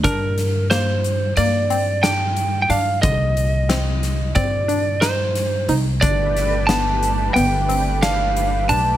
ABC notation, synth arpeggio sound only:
X:1
M:9/8
L:1/8
Q:3/8=60
K:Cdor
V:1 name="Synth arpeggio sound"
D2 B,2 B, C D2 D | D,2 C2 C D E2 E | D2 =B,2 B, C D2 D |]